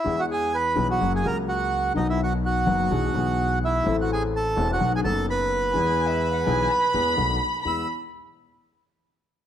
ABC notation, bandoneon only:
X:1
M:4/4
L:1/16
Q:1/4=127
K:E
V:1 name="Bandoneon"
[Ee] [Ff] [Gg]2 [Bb]3 [Ff]2 [Gg] [^A^a]2 [Ff]4 | [Dd] [Ee] [Ff]2 [Ff]8- [Ff]2 [Ee]2- | [Ee] [Ff] [Gg]2 [Aa]3 [Ff]2 [Gg] [Aa]2 [Bb]4- | [Bb]12 z4 |
e'2 z12 z2 |]